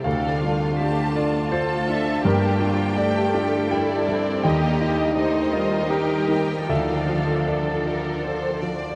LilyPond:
<<
  \new Staff \with { instrumentName = "Violin section" } { \time 3/4 \key d \minor \tempo 4 = 81 << { f''4 a''4 a''4 | g''2 d''4 | ees''4 ees''4 g''8 g''8 | f''4 a'8 bes'8 c''8 d''8 | } \\ { a'4 f'4 f'4 | g'4 a'2 | g'4 c''4 bes'4 | a'4 r2 | } >> }
  \new Staff \with { instrumentName = "Cello section" } { \time 3/4 \key d \minor a'8 f'8 g'8 f'8 a'4 | g'8 f'8 g'4 e'8 d'8 | g'4 ees'8 f'8 g'4 | a'2~ a'8 r8 | }
  \new Staff \with { instrumentName = "Grand piano" } { \time 3/4 \key d \minor << { f''4. d''8 c''4 | bes'4 d''4 g''4 | g''4. ees''8 bes'4 | e''4 d''4 r4 | } \\ { d,8 d'8 f'8 a'8 f'8 d'8 | g,8 d'8 g'8 d'8 g'8 d'8 | ees,8 ees'8 g'8 bes'8 g'8 ees'8 | d,8 f'8 a'8 d''8 a'8 f'8 | } >> }
  \new Staff \with { instrumentName = "Harp" } { \time 3/4 \key d \minor d8 d'8 f'8 g'8 f'8 d'8 | g,8 g8 d'8 e'8 d'8 g8 | ees8 ees'8 g'8 a'8 g'8 ees'8 | d8 f8 f'8 g'8 f'8 f8 | }
  \new Staff \with { instrumentName = "Viola section" } { \time 3/4 \key d \minor << { d'4 d'4 f'8 e''8 | d'4 d'8 f'8 e'4 | ees'8 ees'8 ees'2 | d'2~ d'8 r8 | } \\ { a8 g8 a8 a4. | bes8 bes8 a4 g8 c'8 | bes4 a8 g8 g4 | f2~ f8 r8 | } >> }
>>